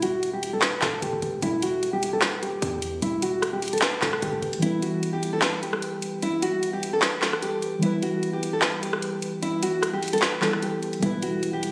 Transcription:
Already playing: 808-style bass E1
0.02 nylon-string guitar F#4, closed hi-hat
0.23 closed hi-hat
0.33 nylon-string guitar G4
0.43 closed hi-hat
0.53 nylon-string guitar A4
0.62 808-style bass D#1, nylon-string guitar B4, snare, clap, closed hi-hat
0.81 808-style bass E1, nylon-string guitar A4, snare, clap, closed hi-hat
1.02 808-style bass E1, nylon-string guitar G4, closed hi-hat
1.13 808-style bass E1
1.22 808-style bass E1, closed hi-hat
1.42 808-style bass E1, nylon-string guitar E4, closed hi-hat
1.62 nylon-string guitar F#4, closed hi-hat
1.83 closed hi-hat
1.93 nylon-string guitar G4
2.03 closed hi-hat
2.13 nylon-string guitar A4
2.21 nylon-string guitar B4, snare, clap, closed hi-hat
2.42 nylon-string guitar G4, closed hi-hat
2.62 808-style bass E2, closed hi-hat
2.82 closed hi-hat
3.02 808-style bass E1, nylon-string guitar E4, closed hi-hat
3.22 nylon-string guitar F#4, closed hi-hat
3.42 cross-stick, closed hi-hat
3.53 nylon-string guitar G4
3.62 closed hi-hat, open hi-hat
3.68 closed hi-hat
3.73 nylon-string guitar A4, closed hi-hat
3.78 clap, closed hi-hat
3.82 nylon-string guitar B4, snare, closed hi-hat
4.02 808-style bass E1, nylon-string guitar A4, snare, clap, closed hi-hat
4.13 cross-stick
4.22 808-style bass G1, nylon-string guitar G4, closed hi-hat
4.33 808-style bass E1
4.42 808-style bass E1, closed hi-hat
4.53 closed hi-hat
4.59 synth keys E3 G3 B3, nylon-string guitar E4, closed hi-hat
4.64 synth keys E4 B4
4.82 nylon-string guitar F#4, closed hi-hat
5.03 closed hi-hat
5.13 nylon-string guitar G4
5.23 closed hi-hat
5.33 nylon-string guitar A4
5.42 nylon-string guitar B4, snare, clap, closed hi-hat
5.62 nylon-string guitar G4, closed hi-hat
5.73 cross-stick
5.82 closed hi-hat
6.02 closed hi-hat
6.22 nylon-string guitar E4, closed hi-hat
6.42 nylon-string guitar F#4, closed hi-hat
6.63 closed hi-hat
6.73 nylon-string guitar G4
6.83 closed hi-hat
6.93 nylon-string guitar A4
7.02 nylon-string guitar B4, snare, clap, closed hi-hat
7.22 nylon-string guitar A4, snare, clap, closed hi-hat
7.33 cross-stick
7.42 nylon-string guitar G4, closed hi-hat
7.62 closed hi-hat
7.79 synth keys E3 G3 B3, nylon-string guitar E4, closed hi-hat
7.84 synth keys E4 B4
8.02 nylon-string guitar F#4, closed hi-hat
8.23 closed hi-hat
8.33 nylon-string guitar G4
8.43 closed hi-hat
8.53 nylon-string guitar A4
8.62 nylon-string guitar B4, snare, clap, closed hi-hat
8.83 nylon-string guitar G4, closed hi-hat
8.93 cross-stick
9.02 closed hi-hat
9.22 closed hi-hat
9.42 nylon-string guitar E4, closed hi-hat
9.63 nylon-string guitar F#4, closed hi-hat
9.83 cross-stick, closed hi-hat
9.93 nylon-string guitar G4
10.03 closed hi-hat, open hi-hat
10.08 closed hi-hat
10.13 nylon-string guitar A4, closed hi-hat
10.18 clap, closed hi-hat
10.22 nylon-string guitar B4, snare, closed hi-hat
10.41 synth keys E3 G3 B3 E4 A4, nylon-string guitar A4, snare, clap, closed hi-hat
10.53 cross-stick
10.62 nylon-string guitar G4, closed hi-hat
10.83 closed hi-hat
10.93 closed hi-hat
10.99 808-style bass E1, synth keys E3 G3 B3, nylon-string guitar E4, closed hi-hat
11.04 synth keys E4 B4
11.22 nylon-string guitar F#4, closed hi-hat
11.43 closed hi-hat
11.53 nylon-string guitar G4
11.63 closed hi-hat

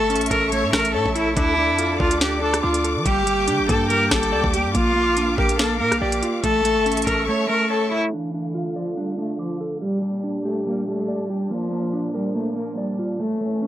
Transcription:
Already playing: clean electric guitar A3, cello A4, string section A4 E5 C#6
0.00 808-style bass G1
0.10 clean electric guitar C#4, closed hi-hat
0.15 808-style bass A1, closed hi-hat
0.21 closed hi-hat
0.26 closed hi-hat
0.31 808-style bass A1, clean electric guitar A4, cello A#4, kick, closed hi-hat
0.52 clean electric guitar A3, cello C#5, closed hi-hat
0.63 808-style bass A2
0.73 808-style bass A1, clean electric guitar A3, cello A#4, kick, cross-stick, snare
0.85 closed hi-hat
0.94 808-style bass A2, cello A4, clean electric guitar C#5
1.06 808-style bass A1, kick
1.16 clean electric guitar E4, cello E4, closed hi-hat
1.27 808-style bass A#1
1.37 808-style bass D2, clean electric guitar D4, cello E4, string section D5 D6, kick, closed hi-hat
1.58 clean electric guitar D4
1.69 808-style bass F2
1.79 clean electric guitar F4, closed hi-hat
2.00 808-style bass D2, cello F4, clean electric guitar D5, kick
2.11 closed hi-hat
2.21 clean electric guitar D4, cello G4, snare, closed hi-hat
2.42 clean electric guitar D4, cello A4
2.54 cross-stick, closed hi-hat
2.63 808-style bass D2, cello F4, clean electric guitar D6
2.74 closed hi-hat
2.84 clean electric guitar A4, closed hi-hat
2.96 808-style bass F3
3.05 808-style bass G1, clean electric guitar G3, string section A#3 G5, cello G4, kick, closed hi-hat
3.26 clean electric guitar G3, closed hi-hat
3.48 808-style bass D3, clean electric guitar D4, closed hi-hat
3.59 808-style bass G1
3.69 808-style bass G2, clean electric guitar A#3, cello A4, kick, closed hi-hat
3.90 clean electric guitar G3, cello A#4, closed hi-hat
4.11 808-style bass G1, clean electric guitar G3, cello A4, kick, cross-stick, snare
4.23 closed hi-hat
4.32 808-style bass D2, clean electric guitar D5
4.44 808-style bass D2, kick
4.54 cello G4, clean electric guitar G4, closed hi-hat
4.65 808-style bass G2
4.74 808-style bass A#1, clean electric guitar A#3, cello F4, string section F5, kick, closed hi-hat
4.96 clean electric guitar A#3
5.17 clean electric guitar D4, closed hi-hat
5.38 808-style bass A#1, cello G4, clean electric guitar A#4, kick
5.49 closed hi-hat
5.59 clean electric guitar A#3, cello A4, snare, closed hi-hat
5.80 808-style bass A#2, clean electric guitar A#3, cello A#4
5.92 808-style bass A#1, cross-stick, closed hi-hat
6.01 808-style bass A#1, cello G4, clean electric guitar D5
6.12 closed hi-hat
6.23 clean electric guitar F4, closed hi-hat
6.44 808-style bass A1, clean electric guitar A3, cello A4, string section A4 E5 C#6, kick, closed hi-hat
6.65 clean electric guitar A3, closed hi-hat
6.76 808-style bass G1
6.86 clean electric guitar C#4, closed hi-hat
6.92 808-style bass A1, closed hi-hat
6.97 closed hi-hat
7.02 closed hi-hat
7.07 808-style bass A1, clean electric guitar A4, cello A#4, kick, closed hi-hat
7.28 clean electric guitar A3, cello C#5
7.49 clean electric guitar A3, cello A#4
7.70 cello A4, clean electric guitar C#5
7.92 clean electric guitar E4, cello E4
8.13 string section D3 A3 F5, cello E3, clean electric guitar D4
8.34 clean electric guitar D4
8.55 clean electric guitar F4
8.76 cello F3, clean electric guitar D5
8.97 cello G3, clean electric guitar D4
9.18 cello A3, clean electric guitar D4
9.39 cello F3, clean electric guitar D6
9.61 clean electric guitar A4
9.82 string section A#2 G3 D4, clean electric guitar G3, cello G3
10.02 clean electric guitar G3
10.24 clean electric guitar D4
10.45 cello A3, clean electric guitar G4
10.66 clean electric guitar G3, cello A#3
10.88 clean electric guitar G3, cello A3
11.08 clean electric guitar D5
11.30 cello G3, clean electric guitar G4
11.50 string section A#2 F3, cello F3, clean electric guitar A#3
11.72 clean electric guitar A#3
11.93 clean electric guitar D4
12.14 cello G3, clean electric guitar A#4
12.35 cello A3, clean electric guitar A#3
12.56 cello A#3, clean electric guitar A#3
12.77 cello G3, clean electric guitar D5
12.99 clean electric guitar F4
13.20 string section A2 E3 C#4, clean electric guitar A3, cello A3
13.41 clean electric guitar A3
13.62 clean electric guitar C#4

